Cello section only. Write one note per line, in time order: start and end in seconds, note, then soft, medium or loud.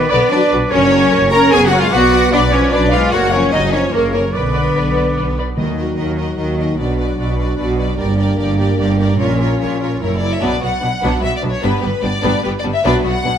0.00 0.10 B3 medium
0.12 0.32 B3 medium
0.31 0.52 D4 medium
0.72 1.28 C#4 loud
1.32 1.52 A#4 loud
1.52 1.65 G#4 loud
1.67 1.79 F#4 loud
1.80 1.85 F4 medium
1.92 2.31 F#4 loud
2.33 2.41 D4 loud
2.52 2.72 C#4 medium
2.73 2.92 D4 medium
2.92 3.12 F4 medium
3.12 3.32 F#4 medium
3.32 3.52 C#4 medium
3.53 3.73 D#4 medium
3.72 3.93 C#4 medium
3.92 4.11 A#3 medium
4.12 4.20 A#3 medium
4.33 5.35 B3 medium
5.57 5.93 D#3 soft
5.97 6.33 D#3 soft
6.37 6.73 D#3 soft
6.77 7.13 B2 soft
7.18 7.53 B2 soft
7.57 7.93 B2 medium
7.97 8.33 G2 medium
8.38 8.73 G2 medium
8.77 9.13 G2 medium
9.18 9.54 A#2 medium
9.59 9.96 A#2 medium
10.01 10.38 F#2 medium
10.42 10.50 B2 medium
10.62 10.70 B2 soft
10.83 10.91 B2 soft
11.03 11.11 B2 medium
11.25 11.33 B2 soft
11.44 11.52 B2 soft
11.64 11.72 G2 medium
11.83 11.91 G2 soft
12.04 12.12 G2 soft
12.24 12.32 G2 medium
12.44 12.52 G2 medium
12.64 12.72 G2 soft
12.83 12.91 B2 medium
13.03 13.11 B2 soft
13.24 13.32 B2 medium